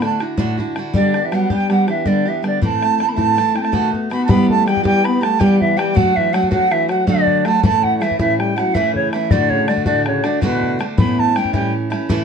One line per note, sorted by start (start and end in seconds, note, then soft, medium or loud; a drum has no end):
0.01 0.20 D3 medium
0.01 0.20 A3 medium
0.01 0.20 D4 medium
0.01 0.20 E4 medium
0.01 0.19 F#4 medium
0.01 0.20 A5 medium
0.01 bodhran medium
0.20 0.37 D3 soft
0.20 0.38 D4 soft
0.20 0.38 E4 medium
0.20 0.38 F#4 medium
0.20 bodhran medium
0.37 0.58 D2 medium
0.37 0.58 A2 medium
0.37 0.58 D3 medium
0.37 0.59 D4 loud
0.37 0.57 E4 medium
0.37 0.56 F#4 loud
0.37 bodhran medium
0.57 0.75 D3 medium
0.57 0.75 D4 medium
0.57 0.76 E4 medium
0.57 0.76 F#4 medium
0.57 bodhran soft
0.76 0.93 D3 medium
0.76 0.94 D4 soft
0.76 0.95 E4 medium
0.76 0.95 F#4 medium
0.76 bodhran medium
0.93 1.25 D3 medium
0.93 1.14 G3 medium
0.93 1.14 B3 medium
0.93 1.14 D4 medium
0.93 1.13 G4 medium
0.93 1.26 D5 medium
0.93 bodhran medium
1.14 1.31 B3 soft
1.14 1.33 D4 soft
1.14 1.32 G4 soft
1.14 bodhran medium
1.23 1.34 E3 medium
1.23 1.36 E5 medium
1.32 1.51 F#3 medium
1.32 1.50 G3 medium
1.32 1.50 B3 medium
1.32 1.50 D4 medium
1.32 1.49 G4 medium
1.32 1.51 F#5 medium
1.32 bodhran medium
1.49 1.89 G3 medium
1.49 1.68 G3 medium
1.49 1.69 B3 medium
1.49 1.70 D4 medium
1.49 1.70 G4 medium
1.49 1.70 G5 loud
1.49 bodhran medium
1.70 1.88 G3 medium
1.70 1.88 B3 medium
1.70 1.88 D4 medium
1.70 1.86 G4 medium
1.70 1.87 F#5 loud
1.70 bodhran medium
1.87 2.07 E3 medium
1.87 2.05 B3 soft
1.87 2.06 D4 soft
1.87 2.06 G4 medium
1.87 2.08 E5 medium
1.87 bodhran medium
2.05 2.28 D3 medium
2.05 2.26 G3 medium
2.05 2.26 B3 medium
2.05 2.26 D4 medium
2.05 2.24 G4 medium
2.05 2.29 D5 medium
2.05 bodhran medium
2.25 2.46 E3 medium
2.25 2.42 B3 soft
2.25 2.43 D4 medium
2.25 2.44 G4 medium
2.25 2.45 E5 medium
2.42 2.62 D3 medium
2.42 2.61 G3 soft
2.42 2.62 B3 medium
2.42 2.62 D4 soft
2.42 2.63 G4 medium
2.42 bodhran medium
2.46 2.62 D5 medium
2.62 2.82 A2 medium
2.62 2.82 E3 medium
2.62 3.02 A3 medium
2.62 2.82 A3 medium
2.62 2.82 C4 medium
2.62 2.80 E4 medium
2.62 3.10 A5 loud
2.62 bodhran medium
2.81 2.99 A3 soft
2.81 2.99 C4 soft
2.81 3.00 E4 soft
2.81 bodhran medium
2.98 3.17 E3 medium
2.98 3.16 A3 medium
2.98 3.17 C4 medium
2.98 3.15 E4 medium
2.98 bodhran medium
3.07 3.14 B3 medium
3.07 3.14 B5 medium
3.12 3.62 A3 loud
3.12 3.58 A5 loud
3.16 3.38 A2 medium
3.16 3.35 E3 medium
3.16 3.37 A3 medium
3.16 3.36 C4 medium
3.16 3.37 E4 medium
3.16 bodhran medium
3.36 3.55 E3 medium
3.36 3.55 A3 medium
3.36 3.56 C4 medium
3.36 3.53 E4 medium
3.36 bodhran medium
3.54 3.72 A3 soft
3.54 3.73 C4 soft
3.54 3.73 E4 soft
3.54 3.63 G5 medium
3.54 bodhran medium
3.62 4.09 A3 medium
3.62 3.89 A5 loud
3.62 bodhran medium
3.72 3.93 B2 medium
3.72 3.93 D#3 medium
3.72 3.92 A3 medium
3.72 3.93 B3 medium
3.72 3.90 F#4 medium
3.72 bodhran medium
3.92 4.11 A3 soft
3.92 4.10 B3 soft
3.92 4.10 F#4 soft
3.92 bodhran soft
4.10 4.27 D#3 medium
4.10 4.29 A3 medium
4.10 4.28 B3 medium
4.10 4.29 B3 medium
4.10 4.30 F#4 medium
4.10 4.24 B5 loud
4.10 bodhran medium
4.24 4.65 E3 medium
4.24 4.30 A5 medium
4.29 4.66 G3 loud
4.29 4.67 B3 medium
4.29 4.51 B3 loud
4.29 4.68 G4 medium
4.29 4.49 B5 loud
4.29 bodhran loud
4.49 4.70 A3 medium
4.49 4.66 A5 loud
4.49 bodhran soft
4.66 4.84 E3 medium
4.66 4.84 G3 medium
4.66 4.85 G3 medium
4.66 4.83 B3 medium
4.66 4.82 G4 medium
4.66 4.84 G5 loud
4.66 bodhran medium
4.77 bodhran soft
4.83 5.23 E3 medium
4.83 5.23 G3 medium
4.83 5.04 G3 loud
4.83 5.21 B3 medium
4.83 5.20 G4 medium
4.83 5.06 G5 loud
4.83 bodhran medium
5.04 5.22 B3 loud
5.04 5.23 B5 loud
5.04 bodhran medium
5.21 5.39 G3 soft
5.21 5.42 A3 medium
5.21 5.39 B3 medium
5.21 5.40 G4 medium
5.21 5.41 A5 loud
5.21 bodhran medium
5.39 5.75 E3 medium
5.39 5.77 G3 medium
5.39 5.63 G3 loud
5.39 5.78 B3 medium
5.39 5.79 G4 loud
5.39 5.59 G5 loud
5.39 bodhran medium
5.60 5.80 E3 medium
5.60 5.78 E5 loud
5.60 bodhran soft
5.77 5.94 E3 medium
5.77 5.95 G3 medium
5.77 5.98 G3 medium
5.77 5.96 B3 medium
5.77 5.96 G4 medium
5.77 5.97 G5 loud
5.77 bodhran medium
5.95 6.32 F#3 medium
5.95 6.15 F#3 medium
5.95 6.34 A3 medium
5.95 6.34 D4 medium
5.95 6.35 F#4 medium
5.95 6.17 F#5 loud
5.95 bodhran medium
6.16 6.36 E3 medium
6.16 6.34 E5 loud
6.16 bodhran soft
6.33 6.52 F#3 medium
6.33 6.51 A3 medium
6.33 6.51 D4 medium
6.33 6.50 F#4 medium
6.33 6.50 F#5 loud
6.33 bodhran medium
6.43 bodhran soft
6.51 6.70 F#3 medium
6.51 6.91 F#3 medium
6.51 6.91 A3 medium
6.51 6.89 D4 medium
6.51 6.87 F#4 medium
6.51 6.73 F#5 loud
6.51 bodhran medium
6.71 6.91 E3 loud
6.71 6.89 E5 loud
6.71 bodhran medium
6.88 7.08 F#3 medium
6.88 7.07 A3 soft
6.88 7.07 D4 soft
6.88 7.07 F#4 medium
6.88 7.06 F#5 medium
6.88 bodhran medium
7.07 7.47 D3 loud
7.07 7.44 F#3 medium
7.07 7.45 A3 medium
7.07 7.46 D4 medium
7.07 7.46 F#4 medium
7.07 7.47 D5 loud
7.07 bodhran medium
7.27 bodhran soft
7.45 7.63 F#3 medium
7.45 7.62 A3 medium
7.45 7.63 A3 medium
7.45 7.64 D4 medium
7.45 7.65 F#4 medium
7.45 7.63 A5 loud
7.45 bodhran medium
7.63 8.01 A2 medium
7.63 8.00 E3 medium
7.63 8.03 A3 loud
7.63 8.02 A3 medium
7.63 8.02 C#4 medium
7.63 8.02 E4 medium
7.63 7.85 A5 loud
7.63 bodhran medium
7.83 7.97 F#5 loud
7.83 bodhran soft
7.97 8.19 E3 medium
7.97 8.19 E5 loud
7.97 8.03 F#5 medium
8.02 8.19 E3 medium
8.02 8.19 A3 medium
8.02 8.19 C#4 medium
8.02 8.18 E4 medium
8.02 bodhran medium
8.11 bodhran soft
8.19 8.58 A2 medium
8.19 8.41 E3 medium
8.19 8.58 E3 medium
8.19 8.59 A3 medium
8.19 8.57 C#4 medium
8.19 8.55 E4 medium
8.19 8.38 E5 loud
8.19 bodhran medium
8.38 8.57 G3 medium
8.38 8.58 G5 medium
8.38 bodhran medium
8.56 8.77 F#3 medium
8.56 8.75 A3 medium
8.56 8.75 C#4 soft
8.56 8.75 E4 medium
8.56 8.75 F#5 loud
8.56 bodhran medium
8.74 9.13 A2 medium
8.74 8.97 E3 loud
8.74 9.11 E3 medium
8.74 9.14 A3 medium
8.74 9.14 C#4 medium
8.74 9.14 E4 medium
8.74 8.95 E5 loud
8.74 bodhran medium
8.95 9.12 C#3 medium
8.95 9.11 C#5 medium
8.95 bodhran soft
9.12 9.31 E3 medium
9.12 9.34 E3 medium
9.12 9.31 A3 medium
9.12 9.32 C#4 medium
9.12 9.32 E5 medium
9.12 bodhran medium
9.16 9.32 E4 medium
9.31 9.69 D2 medium
9.31 9.69 A2 loud
9.31 9.67 D3 medium
9.31 9.54 D3 medium
9.31 9.69 A3 medium
9.31 9.69 D4 medium
9.31 9.70 F#4 medium
9.31 9.51 D5 loud
9.31 bodhran loud
9.49 9.69 C#3 medium
9.49 9.69 C#5 loud
9.49 bodhran soft
9.68 9.86 D3 medium
9.68 9.85 A3 medium
9.68 9.85 D4 medium
9.68 9.85 F#4 medium
9.68 9.85 D5 medium
9.68 bodhran medium
9.77 bodhran soft
9.86 10.25 D2 medium
9.86 10.25 A2 medium
9.86 10.25 D3 medium
9.86 10.07 D3 medium
9.86 10.25 A3 medium
9.86 10.23 D4 medium
9.86 10.22 F#4 medium
9.86 10.05 D5 medium
9.86 bodhran medium
10.06 10.26 C#3 medium
10.06 10.26 C#5 medium
10.06 bodhran medium
10.24 10.42 D3 medium
10.24 10.41 D3 medium
10.24 10.42 A3 soft
10.24 10.42 D4 medium
10.24 10.42 F#4 medium
10.24 10.42 D5 medium
10.24 bodhran medium
10.41 10.80 D2 medium
10.41 10.80 A2 medium
10.41 10.78 B2 medium
10.41 10.78 D3 medium
10.41 10.79 A3 loud
10.41 10.80 D4 medium
10.41 10.80 F#4 loud
10.41 10.74 B4 loud
10.41 bodhran medium
10.63 bodhran soft
10.79 10.98 D3 medium
10.79 10.98 A3 medium
10.79 10.99 D4 medium
10.79 10.99 F#4 medium
10.79 bodhran medium
10.98 11.36 A2 medium
10.98 11.35 E3 medium
10.98 11.35 A3 medium
10.98 11.34 B3 medium
10.98 11.36 C#4 medium
10.98 11.38 E4 medium
10.98 11.20 B5 loud
10.98 bodhran loud
11.18 11.37 A5 loud
11.18 bodhran soft
11.35 11.54 E3 medium
11.35 11.53 A3 medium
11.35 11.53 C#4 medium
11.35 11.52 E4 medium
11.35 11.53 G5 medium
11.35 bodhran medium
11.45 bodhran soft
11.53 11.92 A2 medium
11.53 12.09 E3 medium
11.53 11.73 G3 medium
11.53 11.92 A3 medium
11.53 11.91 C#4 medium
11.53 11.90 E4 medium
11.53 11.72 G5 medium
11.53 bodhran medium
11.90 12.09 A3 medium
11.90 12.10 C#4 medium
11.90 12.09 E4 medium
11.90 bodhran medium
12.09 12.24 A2 medium
12.09 12.24 E3 loud
12.09 12.24 A3 loud
12.09 12.24 C#4 medium
12.09 12.24 E4 loud
12.09 bodhran medium